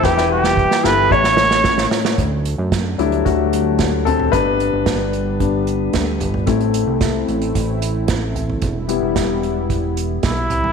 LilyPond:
<<
  \new Staff \with { instrumentName = "Trumpet" } { \time 4/4 \key d \mixolydian \tempo 4 = 112 g'8 g'4 b'8 cis''4. r8 | r1 | r1 | r1 |
r2. e'4 | }
  \new Staff \with { instrumentName = "Grand piano" } { \time 4/4 \key d \mixolydian <e' g' b'>16 <e' g' b'>4 r16 <e' g' a'>8 <e' a' cis''>4. r8 | r4. <g e'>8 <a fis'>4. <c' a'>8 | b'2. r4 | r1 |
r1 | }
  \new Staff \with { instrumentName = "Grand piano" } { \time 4/4 \key d \mixolydian e4. r8 a,4. r8 | r4. <fis a d'>8 r2 | <g b d'>4. r8 <g b d'>8 r4. | <a c' e'>4. r2 r8 |
r8 <g b e'>8 r2. | }
  \new Staff \with { instrumentName = "Analog synth pad" } { \time 4/4 \key d \mixolydian << { e'2 e'2 | d'1~ | d'1 | e'1 |
e'1 | } \\ { <g b>2 <a cis'>2 | <fis a>1 | <g b>1 | <a c'>1 |
<g b>1 | } >> }
  \new Staff \with { instrumentName = "Analog synth bass" } { \clef bass \time 4/4 \key d \mixolydian e,,4~ e,,16 r16 g,,8 a,,4. r8 | d,8. fis,8. d,8 d,2 | g,,8. g,,16 g,,2 d,8 g,,8 | a,,8. c,8. a,,8 a,,2 |
e,,8. e,,16 e,,2 b,,8 c,8 | }
  \new DrumStaff \with { instrumentName = "Drums" } \drummode { \time 4/4 <bd sn>16 sn8 sn16 bd16 sn16 sn8 bd16 sn16 sn16 sn16 <bd sn>16 sn16 sn16 sn16 | <hh bd>8 hh8 <hh bd sn>8 hh16 hh16 <hh bd>8 hh8 <hh bd sn>8 <hh tomfh>16 tomfh16 | <hh bd>8 hh8 <hh bd sn>8 hh8 <hh bd>8 hh8 <hh bd sn>8 <hh tomfh>16 tomfh16 | <hh bd>16 hh16 hh8 <hh bd sn>8 hh16 hh16 <hh bd>8 hh8 <hh bd sn>8 <hh tomfh>16 tomfh16 |
<hh bd>8 hh8 <hh bd sn>8 hh8 <hh bd>8 hh8 <hh bd sn>8 <hh tomfh>16 tomfh16 | }
>>